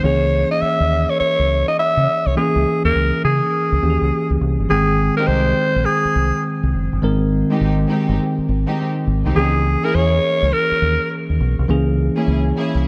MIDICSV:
0, 0, Header, 1, 6, 480
1, 0, Start_track
1, 0, Key_signature, -4, "major"
1, 0, Tempo, 582524
1, 30, Time_signature, 4, 2, 24, 8
1, 10611, End_track
2, 0, Start_track
2, 0, Title_t, "Alto saxophone"
2, 0, Program_c, 0, 65
2, 31, Note_on_c, 0, 73, 102
2, 415, Note_off_c, 0, 73, 0
2, 420, Note_on_c, 0, 75, 99
2, 507, Note_on_c, 0, 76, 107
2, 519, Note_off_c, 0, 75, 0
2, 904, Note_on_c, 0, 73, 96
2, 916, Note_off_c, 0, 76, 0
2, 982, Note_off_c, 0, 73, 0
2, 986, Note_on_c, 0, 73, 99
2, 1354, Note_off_c, 0, 73, 0
2, 1385, Note_on_c, 0, 75, 90
2, 1465, Note_off_c, 0, 75, 0
2, 1477, Note_on_c, 0, 76, 111
2, 1868, Note_on_c, 0, 73, 87
2, 1880, Note_off_c, 0, 76, 0
2, 1949, Note_off_c, 0, 73, 0
2, 1953, Note_on_c, 0, 68, 83
2, 2317, Note_off_c, 0, 68, 0
2, 2347, Note_on_c, 0, 70, 88
2, 2649, Note_off_c, 0, 70, 0
2, 2675, Note_on_c, 0, 68, 83
2, 3599, Note_off_c, 0, 68, 0
2, 3874, Note_on_c, 0, 68, 97
2, 4237, Note_off_c, 0, 68, 0
2, 4260, Note_on_c, 0, 70, 84
2, 4342, Note_on_c, 0, 72, 107
2, 4354, Note_off_c, 0, 70, 0
2, 4823, Note_on_c, 0, 68, 87
2, 4835, Note_off_c, 0, 72, 0
2, 5306, Note_off_c, 0, 68, 0
2, 7712, Note_on_c, 0, 68, 92
2, 8110, Note_on_c, 0, 70, 95
2, 8122, Note_off_c, 0, 68, 0
2, 8200, Note_on_c, 0, 73, 113
2, 8213, Note_off_c, 0, 70, 0
2, 8678, Note_on_c, 0, 70, 98
2, 8690, Note_off_c, 0, 73, 0
2, 9154, Note_off_c, 0, 70, 0
2, 10611, End_track
3, 0, Start_track
3, 0, Title_t, "String section"
3, 0, Program_c, 1, 48
3, 4259, Note_on_c, 1, 56, 71
3, 4261, Note_on_c, 1, 60, 68
3, 4262, Note_on_c, 1, 63, 68
3, 4264, Note_on_c, 1, 67, 82
3, 4403, Note_off_c, 1, 56, 0
3, 4404, Note_off_c, 1, 60, 0
3, 4405, Note_off_c, 1, 63, 0
3, 4406, Note_off_c, 1, 67, 0
3, 6181, Note_on_c, 1, 56, 77
3, 6183, Note_on_c, 1, 60, 65
3, 6184, Note_on_c, 1, 63, 73
3, 6185, Note_on_c, 1, 67, 87
3, 6324, Note_off_c, 1, 56, 0
3, 6325, Note_off_c, 1, 60, 0
3, 6326, Note_off_c, 1, 63, 0
3, 6326, Note_off_c, 1, 67, 0
3, 6505, Note_on_c, 1, 56, 76
3, 6507, Note_on_c, 1, 60, 68
3, 6509, Note_on_c, 1, 63, 69
3, 6512, Note_on_c, 1, 67, 86
3, 6692, Note_off_c, 1, 56, 0
3, 6693, Note_off_c, 1, 60, 0
3, 6694, Note_off_c, 1, 63, 0
3, 6695, Note_off_c, 1, 67, 0
3, 7141, Note_on_c, 1, 56, 74
3, 7142, Note_on_c, 1, 60, 68
3, 7142, Note_on_c, 1, 63, 73
3, 7144, Note_on_c, 1, 67, 86
3, 7284, Note_off_c, 1, 56, 0
3, 7284, Note_off_c, 1, 60, 0
3, 7285, Note_off_c, 1, 63, 0
3, 7286, Note_off_c, 1, 67, 0
3, 7622, Note_on_c, 1, 56, 77
3, 7624, Note_on_c, 1, 60, 70
3, 7624, Note_on_c, 1, 63, 66
3, 7626, Note_on_c, 1, 67, 78
3, 7765, Note_off_c, 1, 56, 0
3, 7766, Note_off_c, 1, 60, 0
3, 7766, Note_off_c, 1, 63, 0
3, 7767, Note_off_c, 1, 67, 0
3, 8102, Note_on_c, 1, 58, 72
3, 8104, Note_on_c, 1, 61, 63
3, 8105, Note_on_c, 1, 64, 65
3, 8106, Note_on_c, 1, 68, 84
3, 8245, Note_off_c, 1, 58, 0
3, 8246, Note_off_c, 1, 61, 0
3, 8246, Note_off_c, 1, 64, 0
3, 8247, Note_off_c, 1, 68, 0
3, 10023, Note_on_c, 1, 58, 77
3, 10025, Note_on_c, 1, 61, 68
3, 10026, Note_on_c, 1, 64, 69
3, 10029, Note_on_c, 1, 68, 84
3, 10165, Note_off_c, 1, 58, 0
3, 10166, Note_off_c, 1, 61, 0
3, 10167, Note_off_c, 1, 64, 0
3, 10168, Note_off_c, 1, 68, 0
3, 10352, Note_on_c, 1, 58, 75
3, 10354, Note_on_c, 1, 61, 71
3, 10354, Note_on_c, 1, 64, 70
3, 10357, Note_on_c, 1, 68, 86
3, 10536, Note_off_c, 1, 58, 0
3, 10536, Note_off_c, 1, 61, 0
3, 10536, Note_off_c, 1, 64, 0
3, 10538, Note_off_c, 1, 68, 0
3, 10611, End_track
4, 0, Start_track
4, 0, Title_t, "Tine electric piano"
4, 0, Program_c, 2, 4
4, 0, Control_c, 2, 64, 127
4, 25, Note_on_c, 2, 52, 68
4, 32, Note_on_c, 2, 58, 60
4, 38, Note_on_c, 2, 61, 61
4, 41, Control_c, 2, 64, 0
4, 44, Note_on_c, 2, 68, 74
4, 196, Control_c, 2, 64, 127
4, 1915, Note_off_c, 2, 52, 0
4, 1918, Note_off_c, 2, 58, 0
4, 1921, Note_off_c, 2, 61, 0
4, 1924, Note_off_c, 2, 68, 0
4, 1945, Note_on_c, 2, 52, 68
4, 1952, Note_on_c, 2, 58, 66
4, 1958, Note_on_c, 2, 61, 63
4, 1966, Note_on_c, 2, 68, 77
4, 3123, Note_off_c, 2, 52, 0
4, 3127, Note_off_c, 2, 58, 0
4, 3130, Note_off_c, 2, 61, 0
4, 3134, Note_off_c, 2, 68, 0
4, 3149, Note_on_c, 2, 52, 50
4, 3153, Note_on_c, 2, 58, 50
4, 3156, Note_on_c, 2, 61, 45
4, 3159, Note_on_c, 2, 67, 43
4, 3213, Note_on_c, 2, 68, 59
4, 3223, Note_off_c, 2, 67, 0
4, 3864, Note_on_c, 2, 51, 69
4, 3870, Note_off_c, 2, 52, 0
4, 3871, Note_on_c, 2, 56, 63
4, 3872, Note_off_c, 2, 58, 0
4, 3873, Note_off_c, 2, 61, 0
4, 3878, Note_on_c, 2, 60, 65
4, 3880, Control_c, 2, 64, 0
4, 3884, Note_on_c, 2, 79, 69
4, 3901, Note_off_c, 2, 68, 0
4, 4048, Control_c, 2, 64, 127
4, 5754, Note_off_c, 2, 51, 0
4, 5758, Note_off_c, 2, 56, 0
4, 5761, Note_off_c, 2, 60, 0
4, 5764, Note_off_c, 2, 79, 0
4, 5782, Note_on_c, 2, 51, 81
4, 5788, Note_on_c, 2, 56, 68
4, 5796, Note_on_c, 2, 60, 76
4, 5802, Note_on_c, 2, 70, 91
4, 7673, Note_off_c, 2, 51, 0
4, 7676, Note_off_c, 2, 56, 0
4, 7680, Note_off_c, 2, 60, 0
4, 7683, Note_off_c, 2, 70, 0
4, 7705, Note_on_c, 2, 52, 70
4, 7712, Note_on_c, 2, 58, 60
4, 7718, Note_on_c, 2, 61, 61
4, 7720, Control_c, 2, 64, 0
4, 7725, Note_on_c, 2, 68, 71
4, 7884, Control_c, 2, 64, 127
4, 9595, Note_off_c, 2, 52, 0
4, 9598, Note_off_c, 2, 58, 0
4, 9601, Note_off_c, 2, 61, 0
4, 9605, Note_off_c, 2, 68, 0
4, 9626, Note_on_c, 2, 52, 83
4, 9633, Note_on_c, 2, 58, 78
4, 9638, Note_on_c, 2, 61, 73
4, 9646, Note_on_c, 2, 68, 89
4, 10569, Note_off_c, 2, 52, 0
4, 10572, Note_off_c, 2, 58, 0
4, 10575, Note_off_c, 2, 61, 0
4, 10579, Note_off_c, 2, 68, 0
4, 10601, Control_c, 2, 64, 0
4, 10611, End_track
5, 0, Start_track
5, 0, Title_t, "Fingered electric bass"
5, 0, Program_c, 3, 33
5, 30, Note_on_c, 3, 37, 106
5, 352, Note_off_c, 3, 37, 0
5, 662, Note_on_c, 3, 39, 82
5, 858, Note_off_c, 3, 39, 0
5, 1147, Note_on_c, 3, 37, 82
5, 1341, Note_off_c, 3, 37, 0
5, 1624, Note_on_c, 3, 49, 91
5, 1695, Note_off_c, 3, 49, 0
5, 1864, Note_on_c, 3, 36, 88
5, 1935, Note_off_c, 3, 36, 0
5, 2106, Note_on_c, 3, 37, 91
5, 2176, Note_off_c, 3, 37, 0
5, 2347, Note_on_c, 3, 39, 84
5, 2416, Note_off_c, 3, 39, 0
5, 2434, Note_on_c, 3, 37, 93
5, 2557, Note_off_c, 3, 37, 0
5, 2673, Note_on_c, 3, 49, 98
5, 2797, Note_off_c, 3, 49, 0
5, 3068, Note_on_c, 3, 37, 87
5, 3137, Note_off_c, 3, 37, 0
5, 3155, Note_on_c, 3, 39, 88
5, 3278, Note_off_c, 3, 39, 0
5, 3310, Note_on_c, 3, 37, 87
5, 3378, Note_off_c, 3, 37, 0
5, 3547, Note_on_c, 3, 37, 82
5, 3616, Note_off_c, 3, 37, 0
5, 3635, Note_on_c, 3, 36, 86
5, 3758, Note_off_c, 3, 36, 0
5, 3787, Note_on_c, 3, 31, 85
5, 3856, Note_off_c, 3, 31, 0
5, 3875, Note_on_c, 3, 32, 95
5, 4194, Note_off_c, 3, 32, 0
5, 4351, Note_on_c, 3, 36, 101
5, 4547, Note_off_c, 3, 36, 0
5, 4746, Note_on_c, 3, 34, 80
5, 4816, Note_off_c, 3, 34, 0
5, 5072, Note_on_c, 3, 36, 97
5, 5196, Note_off_c, 3, 36, 0
5, 5465, Note_on_c, 3, 36, 92
5, 5535, Note_off_c, 3, 36, 0
5, 5550, Note_on_c, 3, 30, 94
5, 5675, Note_off_c, 3, 30, 0
5, 5704, Note_on_c, 3, 31, 86
5, 5775, Note_off_c, 3, 31, 0
5, 5791, Note_on_c, 3, 32, 98
5, 6112, Note_off_c, 3, 32, 0
5, 6270, Note_on_c, 3, 32, 105
5, 6466, Note_off_c, 3, 32, 0
5, 6665, Note_on_c, 3, 31, 87
5, 6735, Note_off_c, 3, 31, 0
5, 6993, Note_on_c, 3, 32, 98
5, 7117, Note_off_c, 3, 32, 0
5, 7474, Note_on_c, 3, 32, 91
5, 7597, Note_off_c, 3, 32, 0
5, 7626, Note_on_c, 3, 36, 86
5, 7696, Note_off_c, 3, 36, 0
5, 7716, Note_on_c, 3, 37, 114
5, 8035, Note_off_c, 3, 37, 0
5, 8196, Note_on_c, 3, 40, 95
5, 8390, Note_off_c, 3, 40, 0
5, 8589, Note_on_c, 3, 37, 93
5, 8658, Note_off_c, 3, 37, 0
5, 8916, Note_on_c, 3, 39, 91
5, 9038, Note_off_c, 3, 39, 0
5, 9309, Note_on_c, 3, 39, 77
5, 9378, Note_off_c, 3, 39, 0
5, 9397, Note_on_c, 3, 35, 102
5, 9519, Note_off_c, 3, 35, 0
5, 9551, Note_on_c, 3, 36, 83
5, 9619, Note_off_c, 3, 36, 0
5, 9637, Note_on_c, 3, 37, 111
5, 9955, Note_off_c, 3, 37, 0
5, 10116, Note_on_c, 3, 37, 101
5, 10310, Note_off_c, 3, 37, 0
5, 10506, Note_on_c, 3, 36, 85
5, 10576, Note_off_c, 3, 36, 0
5, 10611, End_track
6, 0, Start_track
6, 0, Title_t, "Muted fingered electric bass strokes"
6, 510, Note_on_c, 9, 29, 50
6, 592, Note_off_c, 9, 29, 0
6, 991, Note_on_c, 9, 29, 45
6, 1073, Note_off_c, 9, 29, 0
6, 4985, Note_on_c, 9, 29, 48
6, 5067, Note_off_c, 9, 29, 0
6, 6907, Note_on_c, 9, 29, 50
6, 6989, Note_off_c, 9, 29, 0
6, 8830, Note_on_c, 9, 29, 49
6, 8913, Note_off_c, 9, 29, 0
6, 10611, End_track
0, 0, End_of_file